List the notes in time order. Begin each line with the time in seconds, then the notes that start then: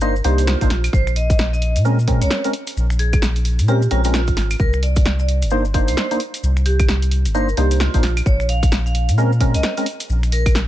Already playing: G1
0.01 A#3 D4 D#4 A#4 C5, maracas
0.16 maracas
0.24 C2 A#3 D4 D#4 G4 C5, open hi-hat
0.38 closed hi-hat, maracas
0.47 F4, snare, maracas
0.61 A#1 A#3 D4 D#4 C5, kick, closed hi-hat, maracas
0.70 A#1, snare, open hi-hat
0.84 closed hi-hat, claves, maracas
0.93 A#1 C5, kick, maracas
1.07 finger snap, maracas
1.16 D#5, open hi-hat
1.30 kick, closed hi-hat, maracas
1.39 snare, maracas
1.53 D#5, maracas
1.62 open hi-hat
1.76 A#2, closed hi-hat, maracas
1.85 G#3 C4 C#4 A#4, maracas
1.99 maracas
2.08 G#3 C4 C#4 A#4, kick, open hi-hat
2.22 A#1 C#5, closed hi-hat, maracas
2.31 snare, maracas
2.44 G#3 C4 C#4 A#4, closed hi-hat, maracas
2.53 open hi-hat
2.67 closed hi-hat, maracas
2.77 A#1, maracas
2.90 finger snap, maracas
2.99 G#4, open hi-hat
3.13 kick, closed hi-hat, claves, maracas
3.22 snare, maracas
3.36 open hi-hat, maracas
3.45 open hi-hat
3.59 A#2, closed hi-hat, maracas
3.68 G#3 C4 C#4 G4 A#4, maracas
3.82 maracas
3.91 A#1 G#3 C4 C#4 F4 A#4, open hi-hat
4.04 G#3 C4 C#4 A#4, closed hi-hat, maracas
4.14 F4, snare, maracas
4.27 G#1, kick, closed hi-hat, maracas
4.37 G#1, snare, open hi-hat
4.51 closed hi-hat, claves, maracas
4.59 C2 A#4, kick, maracas
4.73 finger snap, maracas
4.83 D5, open hi-hat
4.96 kick, closed hi-hat, maracas
5.05 snare, maracas
5.19 D5, maracas
5.29 open hi-hat
5.42 G1, closed hi-hat, maracas
5.50 A#3 D4 D#4 C5, maracas
5.65 maracas
5.74 A#3 D4 D#4 C5, kick, open hi-hat
5.88 C2 C5, closed hi-hat, maracas
5.97 snare, maracas
6.11 A#3 D4 D#4 C5, closed hi-hat, maracas
6.20 open hi-hat
6.34 closed hi-hat, maracas
6.43 C2, maracas
6.57 finger snap, maracas
6.66 G4, open hi-hat
6.80 kick, closed hi-hat, claves, maracas
6.89 snare, maracas
7.02 open hi-hat, maracas
7.11 open hi-hat
7.25 G1, closed hi-hat, maracas
7.35 A#3 D4 D#4 A#4 C5, maracas
7.49 maracas
7.57 C2 A#3 D4 D#4 G4 C5, open hi-hat
7.71 closed hi-hat, maracas
7.80 F4, snare, maracas
7.94 A#1 A#3 D4 D#4 C5, kick, closed hi-hat, maracas
8.03 A#1, snare, open hi-hat
8.17 closed hi-hat, claves, maracas
8.26 A#1 C#5, kick, maracas
8.40 finger snap, maracas
8.49 F5, open hi-hat
8.63 kick, closed hi-hat, maracas
8.72 snare, maracas
8.86 F5, maracas
8.95 open hi-hat
9.09 A#2, closed hi-hat, maracas
9.18 G#3 C4 C#4 A#4, maracas
9.32 maracas
9.41 G#3 C4 C#4 A#4, kick, open hi-hat
9.54 A#1 D#5, closed hi-hat, maracas
9.63 snare, maracas
9.77 G#3 C4 C#4 A#4, closed hi-hat, maracas
9.86 open hi-hat
10.00 closed hi-hat, maracas
10.09 A#1, maracas
10.23 finger snap, closed hi-hat, maracas
10.32 A#4, open hi-hat
10.46 kick, closed hi-hat, claves, maracas
10.55 snare, maracas